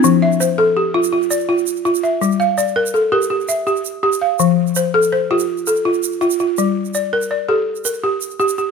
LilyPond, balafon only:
\new Staff \with { instrumentName = "Balafon" } { \time 12/8 \key f \major \tempo 4. = 110 << { c'16 r16 e''8 c''4 g'4 f'8 d''4. r8 e''8~ | e''8 f''8 d''4 a'8 bes'8 g'8 e''4. r8 f''8~ | f''8 r8 c''4 c''8 g'4 a'4. r8 f'8~ | f'8 r8 d''4 d''8 a'4 bes'4. r8 g'8 | } \\ { f4 r8 a'4 f'4 r8 f'4 f'4 | g4 r8 bes'4 g'4 r8 g'4 g'4 | f4 r8 a'4 f'4 r8 f'4 f'4 | g4 r8 bes'4 g'4 r8 g'4 g'4 | } >> }